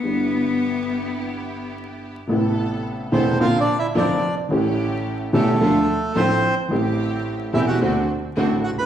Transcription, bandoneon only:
X:1
M:4/4
L:1/16
Q:1/4=108
K:Gmix
V:1 name="Bandoneon"
z16 | [K:Am] z6 [Cc]2 (3[Ff]2 [Dd]2 [Ee]2 [Dd]3 z | z6 [A,A]6 [Cc]3 z | z6 [Ee] [^F^f]2 z4 z [Ff] [Bb] |]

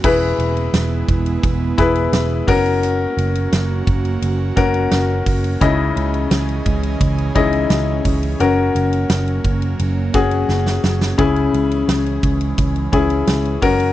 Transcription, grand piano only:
X:1
M:4/4
L:1/8
Q:1/4=86
K:F#mix
V:1 name="Grand piano"
[EGB]4 z [EGB]2 [CFA]- | [CFA]3 z2 [CFA]3 | [CDEGd]4 z [CDEGd]3 | [CFA]4 z [CFG]3 |
[CEG]4 z [CEG]2 [CFA] |]
V:2 name="Grand piano" clef=bass
E,3 z4 z | z8 | C,3 z4 z | z8 |
C,3 z4 z |]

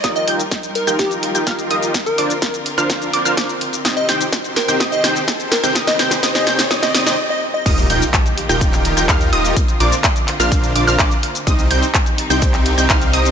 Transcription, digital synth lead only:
X:1
M:4/4
L:1/16
Q:1/4=126
K:Eb
V:1 name="Digital synth lead"
z e z4 B2 G z6 z | z B4 z8 z3 | z e z4 B2 z e z4 B2 | z e z3 e z3 e z e z e z e |
z16 | z16 | z16 |]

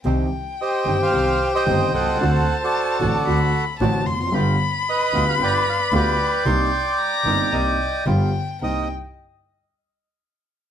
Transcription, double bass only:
X:1
M:4/4
L:1/8
Q:1/4=112
K:Cm
V:1 name="Double bass" clef=bass
C,, z2 G,,, C,, z G,,, C,, | D,, z2 =A,,, D,, z A,,, F,,, | G,,, z2 D,, G,,, z D,, z | C,, z2 G,,, C,, z G,,, z |
C,, z6 z |]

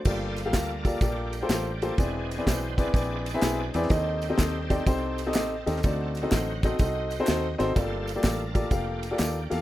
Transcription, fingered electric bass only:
X:1
M:4/4
L:1/8
Q:"Swing" 1/4=125
K:Gm
V:1 name="Fingered electric bass" clef=bass
G,,,2 D,,2 B,,,2 A,,,2 | =E,,,2 =B,,,2 _B,,,2 =B,,, =E,, | E,,2 E,,2 C,,2 A,,, E,, | D,,2 A,,,2 C,,2 E,, _A,,, |
G,,,2 A,,,2 F,,,2 E,, =E,, |]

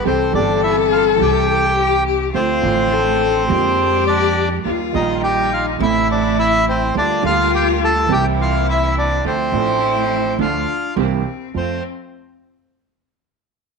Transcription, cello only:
X:1
M:4/4
L:1/8
Q:1/4=104
K:F
V:1 name="Cello"
A6 G G | F2 A2 G4 | F2 _E2 =E4 | F4 E4 |
E4 D2 C2 | C z6 z |]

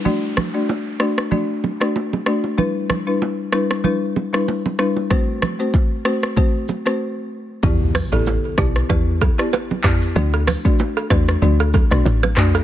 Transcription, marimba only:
X:1
M:4/4
L:1/16
Q:"Swing 16ths" 1/4=95
K:Em
V:1 name="Marimba"
[A,DFd]3 [A,DFd]3 [A,DFd]2 [A,DFd] z2 [A,DFd]3 [A,DFd]2 | [G,DEB]3 [G,DEB]3 [G,DEB]2 [G,DEB] z2 [G,DEB]3 [G,DEB]2 | [A,CFc]3 [A,CFc]3 [A,CFc]2 [A,CFc] z2 [A,CFc] z4 | [B,EGd]3 [B,EGd]3 [B,EGd]2 [B,EGd] z2 [B,EGd]3 [B,EGd]2 |
[A,DFd]3 [A,DFd]3 [A,DFd]2 [A,DFd] z2 [A,DFd]3 [A,DFd]2 |]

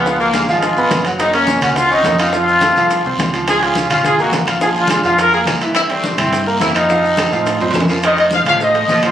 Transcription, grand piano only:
X:1
M:4/4
L:1/8
Q:1/4=211
K:Fphr
V:1 name="Grand piano"
[F,Ff]2 [A,Aa] [F,Ff]2 [_C_c_c']2 [G,Gg]- | [G,Gg] [B,Bb]2 [Ggg']2 [Ddd']2 [Fff'] | [F,Ff]2 [=A,=A=a] [F,Ff]2 [Ccc']2 [F,Ff]- | [F,Ff] [A,Aa]2 [Fff']2 [B,Bb]2 [Fff'] |
[F,Ff]2 [A,Aa] [F,Ff]2 [B,Bb]2 [=E,=E=e]- | [=E,=E=e] [=G,=G=g]2 [Ee=e']2 [B,Bb]2 [Fff'] | [F,Ff]2 [=A,=A=a] [F,Ff]2 [Ccc']2 [F,Ff] | z [=A,=Ac]2 [F,Ff] [A,Ac] [A,Ac]2 [F,Ff] |]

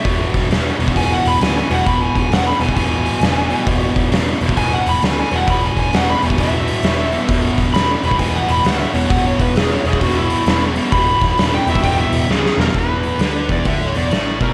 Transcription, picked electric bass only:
X:1
M:4/4
L:1/8
Q:"Swing" 1/4=132
K:Emix
V:1 name="Picked electric bass" clef=bass
E,,, E,,, E,,, E,,, E,,, E,,, D,, E,,, | E,,, E,,, E,,, E,,, E,,,2 E,,,2 | E,,, E,,, E,,, E,,, E,,, E,,, D,, E,,, | E,,, E,,, E,,, E,,, E,,,2 E,,,2 |
E,,, E,,, E,,, E,,, E,,, E,,, D,, E,,, | E,,, E,,, E,,, E,,, E,,,2 E,,,2 | E,,, E,,, E,,, E,,, E,,, E,,, D,, E,,, | E,,,2 D,, E,,, D,, E,,, A,,, B,,, |]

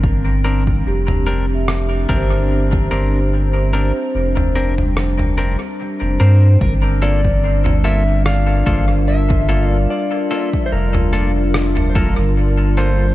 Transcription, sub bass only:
X:1
M:4/4
L:1/16
Q:"Swing 16ths" 1/4=73
K:Gdor
V:1 name="Sub bass" clef=bass
G,,,4 F,,,6 G,,,4 G,,,2- | G,,,3 z F,,,6- F,,, z2 F,,, G,,2 | G,,,8- G,,,2 G,,,6 | z4 F,,,6- F,,, G,,,4- G,,, |]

